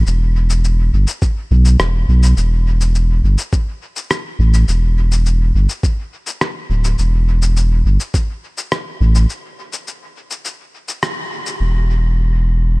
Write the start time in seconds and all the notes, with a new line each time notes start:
0.07 E1, cabasa
0.50 cabasa
0.64 cabasa
0.93 G1
1.08 cabasa
1.22 kick, cabasa
1.51 B1
1.65 cabasa
1.79 E1, cross-stick, cabasa
2.08 B1
2.23 cabasa
2.37 E1, cabasa
2.81 cabasa
2.95 cabasa
3.24 G1
3.38 cabasa
3.53 kick, cabasa
3.96 cabasa
4.11 cross-stick, cabasa
4.39 A1
4.54 cabasa
4.68 E1, cabasa
5.12 cabasa
5.26 cabasa
5.55 G1
5.69 cabasa
5.83 kick, cabasa
6.27 cabasa
6.41 cross-stick, cabasa
6.70 D1
6.84 cabasa
6.99 E1, cabasa
7.42 cabasa
7.57 cabasa
7.85 G1
8.00 cabasa
8.14 kick, cabasa
8.58 cabasa
8.72 cross-stick, cabasa
9.01 A1
9.15 cabasa
9.30 cabasa
9.73 cabasa
9.87 cabasa
10.31 cabasa
10.45 cabasa
10.88 cabasa
11.03 cross-stick, cabasa
11.46 cabasa
11.60 E1